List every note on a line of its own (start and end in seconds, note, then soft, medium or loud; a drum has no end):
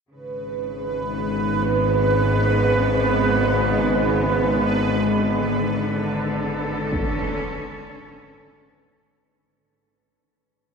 0.09 9.37 G#1 medium
0.09 9.37 G#2 medium
0.09 4.66 C#3 medium
0.09 9.28 B4 medium
1.02 6.48 B3 medium
1.24 4.67 G#3 medium
4.68 9.26 D3 medium
5.86 9.26 A4 medium
6.70 9.25 C#4 medium
6.92 impact medium